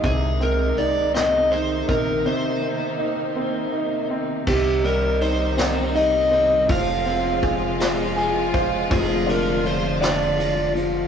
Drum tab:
CC |------|------|x-----|------|
RD |------|------|-xxxxx|xxxxxx|
HH |xxxxxx|------|------|------|
SD |---o--|------|---o--|---o--|
BD |o----o|------|o-----|o-o--o|

CC |------|
RD |xxxxxx|
HH |------|
SD |---o--|
BD |o-----|